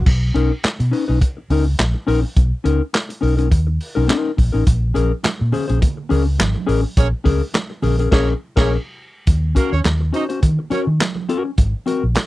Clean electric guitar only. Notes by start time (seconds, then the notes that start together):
0.34 C#4 D#4 A#4
0.64 muted clean electric guitar stroke
0.79 muted clean electric guitar stroke
0.91 C#4 D#4 B4
1.08 C#4 D#4 B4
1.21 muted clean electric guitar stroke
1.37 muted clean electric guitar stroke
1.50 C#4 D#4 A#4
1.66 muted clean electric guitar stroke
1.79 muted clean electric guitar stroke
1.94 muted clean electric guitar stroke
2.07 C#4 D#4 A#4
2.23 muted clean electric guitar stroke
2.64 C#4 D#4 A#4
2.93 muted clean electric guitar stroke
3.09 muted clean electric guitar stroke
3.21 C#4 D#4 A#4
3.37 C#4 D#4 A#4
3.50 muted clean electric guitar stroke
3.67 muted clean electric guitar stroke
3.95 C#4 D#4 A#4
4.08 C#4 D#4 A#4
4.37 muted clean electric guitar stroke
4.52 C#4 D#4 A#4
4.94 C#4 G#4 A#4
5.23 muted clean electric guitar stroke
5.39 muted clean electric guitar stroke
5.52 C#4 G#4 C5
5.68 C#4 G#4 C5
5.81 muted clean electric guitar stroke
5.97 muted clean electric guitar stroke
6.09 C#4 G#4 A#4
6.25 muted clean electric guitar stroke
6.38 muted clean electric guitar stroke
6.55 muted clean electric guitar stroke
6.67 C#4 G#4 A#4
6.83 muted clean electric guitar stroke
7.24 C#4 G#4 A#4
7.54 muted clean electric guitar stroke
7.70 muted clean electric guitar stroke
7.82 C#4 G#4 A#4
7.99 C#4 G#4 A#4
8.11 C#4 G#4 A#4
8.56 C#4 G#4 A#4
9.55 C#4 F#4 A#4
9.84 muted clean electric guitar stroke
10.01 muted clean electric guitar stroke
10.13 C#4 F#4 C5
10.29 C#4 F#4 C5
10.42 muted clean electric guitar stroke
10.59 muted clean electric guitar stroke
10.70 C#4 F#4 A#4
10.87 muted clean electric guitar stroke
11.00 muted clean electric guitar stroke
11.16 muted clean electric guitar stroke
11.29 C#4 F#4 A#4
11.45 muted clean electric guitar stroke
11.86 C4 F#4 A#4
12.15 muted clean electric guitar stroke